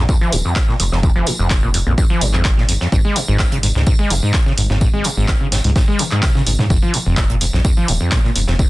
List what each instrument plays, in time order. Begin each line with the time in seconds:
0.09 acid bass F2, kick, tambourine
0.21 acid bass F3
0.32 analog synth bass D#1, acid bass G#2, open hi-hat, tambourine
0.45 acid bass F2
0.56 kick, snare, clap, tambourine
0.68 acid bass A#2, snare
0.80 analog synth bass F1, acid bass F2, open hi-hat, tambourine
0.92 analog synth bass F1, acid bass F2, snare
1.03 acid bass F2, kick, tambourine
1.16 analog synth bass F1, acid bass F3
1.26 acid bass G#2, open hi-hat, tambourine
1.39 analog synth bass F1, acid bass F2
1.50 kick, snare, clap, tambourine
1.63 acid bass A#2
1.74 acid bass F2, open hi-hat, tambourine
1.86 analog synth bass A#1, acid bass F2
1.98 acid bass F2, kick, tambourine
2.10 acid bass F3
2.21 analog synth bass G#1, acid bass G#2, open hi-hat, tambourine
2.34 acid bass F2, clap
2.45 kick, snare, clap, tambourine
2.57 acid bass A#2, snare
2.69 acid bass F2, open hi-hat, tambourine
2.81 acid bass F2, snare
2.92 analog synth bass G#1, acid bass G#2, kick, tambourine
3.05 acid bass G#3
3.16 acid bass B2, open hi-hat, tambourine
3.28 analog synth bass G#1, acid bass G#2
3.39 kick, snare, clap, tambourine
3.52 acid bass C#3, closed hi-hat
3.63 acid bass G#2, open hi-hat, tambourine
3.75 analog synth bass C#2, acid bass G#2, snare
3.87 acid bass G#2, kick, tambourine
3.99 acid bass G#3
4.10 analog synth bass F#1, acid bass B2, open hi-hat, tambourine
4.23 acid bass G#2
4.34 kick, snare, clap, tambourine
4.46 acid bass C#3, snare
4.57 analog synth bass G#1, acid bass G#2, open hi-hat, tambourine
4.70 analog synth bass G#1, acid bass G#2, snare
4.81 acid bass G#2, kick, tambourine
4.93 analog synth bass G#1, acid bass G#3
5.04 acid bass B2, open hi-hat, tambourine
5.17 analog synth bass G#1, acid bass G#2
5.28 kick, snare, clap, tambourine
5.41 acid bass C#3
5.52 acid bass G#2, snare, open hi-hat, tambourine
5.64 analog synth bass C#2, acid bass G#2, open hi-hat
5.76 acid bass G#2, kick, snare, tambourine
5.88 acid bass G#3
5.99 acid bass B2, open hi-hat, high tom, tambourine
6.11 acid bass G#2, clap
6.23 kick, snare, clap, mid tom, tambourine
6.35 acid bass C#3, snare, mid tom
6.46 analog synth bass G#1, acid bass G#2, open hi-hat, tambourine
6.59 acid bass G#2, snare, mid tom
6.70 analog synth bass F1, acid bass F2, kick, tambourine
6.82 acid bass F3
6.94 acid bass G#2, open hi-hat, tambourine
7.06 analog synth bass F1, acid bass F2
7.17 acid bass A#2, kick, snare, clap, tambourine
7.30 acid bass A#2, closed hi-hat
7.41 acid bass F2, open hi-hat, tambourine
7.53 analog synth bass A#1, acid bass F2, snare
7.65 acid bass F2, kick, tambourine
7.77 acid bass F3
7.88 analog synth bass D#1, acid bass G#2, open hi-hat, tambourine
8.01 acid bass F2
8.12 acid bass A#2, kick, snare, clap, tambourine
8.24 acid bass A#2, snare
8.35 analog synth bass F1, acid bass F2, open hi-hat, tambourine
8.47 analog synth bass F1, acid bass F2, snare
8.59 acid bass F2, kick, tambourine